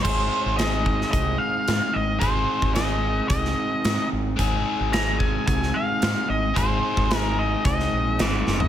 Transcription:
0.03 G#1 G#3 C4 D#4 C5, kick, crash
0.07 G#4
0.46 G#1
0.57 D#5, snare, closed hi-hat
0.86 kick
1.01 snare
1.12 C2 D#5, kick, closed hi-hat
1.38 F5
1.68 G#2, snare, closed hi-hat
1.93 G#1 D#5
2.19 G#1 G#3 C4 D#4 G#4 C5, kick, closed hi-hat
2.62 G#1, kick
2.75 D#5, snare, closed hi-hat
3.29 C2 D#5, kick, closed hi-hat
3.45 snare
3.85 G#2, snare, closed hi-hat
4.12 G#1
4.36 G#1 G#3 C4 D#4 G#4, kick, closed hi-hat
4.80 G#1
4.93 A#5, snare, closed hi-hat
5.19 G#5, kick
5.47 C2 G#5, kick, closed hi-hat
5.63 snare
5.74 F5
6.02 G#2, snare, closed hi-hat
6.29 G#1 D#5
6.54 G#1 G#3 C4 D#4 G#4 C5, kick, closed hi-hat
6.97 G#1, kick
7.11 snare, closed hi-hat
7.18 A#4
7.39 D#5
7.65 C2 D#5, kick, closed hi-hat
7.80 snare
7.93 A#1
8.19 G#1 C5 D#5, snare, closed hi-hat
8.47 F#1, snare
8.60 floor tom

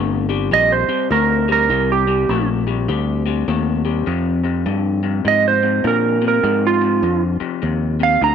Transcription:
Already playing: G1 C3 A3
0.29 C3 G3
0.51 A#1 C3 G3 D#5
0.72 C5
0.88 C3 G3, muted fingered electric bass stroke
1.11 D2 C3 A3 A#4
1.48 C3 G3 A#4
1.69 C2 C3 G3
1.92 G4
2.07 C3 G3
2.29 A#1 C3 A3
2.67 C3 G3
2.88 D2 C3 G3
3.26 C3 G3
3.48 D#2 C3 A3
3.85 C3 G3
4.06 F2 C3
4.44 F2 C3
4.66 F2 G2 D3
5.03 F2 C3
5.25 F2 G#2 C3 D#5
5.48 C5
5.63 F2 C3
5.84 F2 A#2 D3 A#4
6.22 F2 C3
6.28 A#4
6.44 F2 G#2 C3
6.67 F4
6.81 F2 C3
7.03 F2 D3
7.40 F2 C3, muted fingered electric bass stroke
7.62 D#2 F2 C3
8.00 F2 C3 F5
8.21 D2 F2 D3 A#5

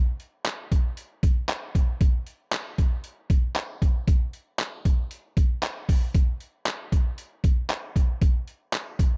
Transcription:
0.20 closed hi-hat
0.46 clap, closed hi-hat
0.72 kick, closed hi-hat
0.97 closed hi-hat
1.23 kick, closed hi-hat
1.49 clap, closed hi-hat
1.75 kick, closed hi-hat
2.01 kick, closed hi-hat
2.26 closed hi-hat
2.52 clap, closed hi-hat
2.78 kick, closed hi-hat
3.04 closed hi-hat
3.30 kick, closed hi-hat
3.56 clap, closed hi-hat
3.82 kick, closed hi-hat
4.08 kick, closed hi-hat
4.33 closed hi-hat
4.59 clap, closed hi-hat
4.85 kick, closed hi-hat
5.11 closed hi-hat
5.37 kick, closed hi-hat
5.63 clap, closed hi-hat
5.89 kick, open hi-hat
6.14 kick, closed hi-hat
6.40 closed hi-hat
6.66 clap, closed hi-hat
6.92 kick, closed hi-hat
7.18 closed hi-hat
7.44 kick, closed hi-hat
7.70 clap, closed hi-hat
7.96 kick, closed hi-hat
8.22 kick, closed hi-hat
8.47 closed hi-hat
8.73 clap, closed hi-hat
8.99 kick, closed hi-hat

